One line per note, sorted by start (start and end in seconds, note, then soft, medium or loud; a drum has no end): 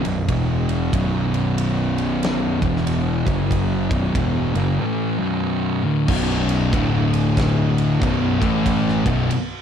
0.04 0.27 B0 medium
0.04 0.23 B1 medium
0.04 0.23 F#2 medium
0.04 ride medium
0.28 0.89 E1 medium
0.28 0.92 E2 loud
0.28 0.92 B2 loud
0.28 0.92 E3 loud
0.28 kick loud
0.28 ride loud
0.69 ride medium
0.93 2.58 B0 loud
0.93 2.61 B1 medium
0.93 2.61 F#2 loud
0.93 2.61 B2 loud
0.93 kick loud
0.93 ride loud
1.34 ride medium
1.58 ride loud
1.98 ride medium
2.23 snare loud
2.23 ride medium
2.61 3.22 E1 medium
2.61 3.25 E2 medium
2.61 3.25 B2 medium
2.61 3.25 E3 medium
2.61 kick loud
2.61 ride medium
2.77 snare soft
2.87 ride medium
3.26 3.87 F#1 loud
3.26 3.90 F#2 medium
3.26 3.90 C#3 medium
3.26 3.90 F#3 loud
3.26 kick loud
3.26 ride medium
3.51 kick loud
3.51 ride medium
3.91 4.13 B0 medium
3.91 4.15 B1 medium
3.91 4.15 F#2 loud
3.91 4.15 B2 loud
3.91 kick loud
3.91 ride medium
4.15 4.52 E1 medium
4.15 4.54 E2 medium
4.15 4.54 B2 medium
4.15 4.55 E3 medium
4.15 kick loud
4.15 ride medium
4.54 4.77 F#1 medium
4.54 4.79 F#2 medium
4.54 4.79 C#3 medium
4.54 4.79 F#3 loud
4.54 ride medium
4.80 5.19 A2 loud
4.80 5.19 E3 loud
4.80 5.19 A3 loud
5.20 5.83 B1 medium
5.20 5.83 F#2 medium
5.20 5.83 B2 medium
5.84 6.07 D2 medium
5.84 6.08 A2 medium
5.84 6.08 D3 loud
6.07 6.69 B0 loud
6.07 6.71 B1 loud
6.07 6.72 F#2 loud
6.07 6.72 B2 loud
6.07 kick loud
6.07 crash loud
6.31 snare soft
6.49 ride medium
6.71 7.98 D1 loud
6.71 7.99 D2 medium
6.71 8.00 A2 medium
6.71 8.01 D3 loud
6.71 kick loud
6.71 ride loud
7.14 ride medium
7.37 kick loud
7.37 snare loud
7.37 ride loud
7.78 ride medium
8.00 8.39 B0 loud
8.00 8.40 B1 loud
8.00 8.41 F#2 medium
8.00 8.42 B2 loud
8.00 kick loud
8.00 ride loud
8.40 9.02 A1 medium
8.40 9.04 A2 loud
8.40 9.05 E3 loud
8.40 9.05 A3 medium
8.40 kick loud
8.40 ride medium
8.66 kick loud
8.66 ride loud
8.88 snare soft
9.04 9.29 B0 loud
9.04 9.29 B1 loud
9.04 9.29 F#2 loud
9.04 9.29 B2 loud
9.04 kick loud
9.04 ride medium
9.31 ride loud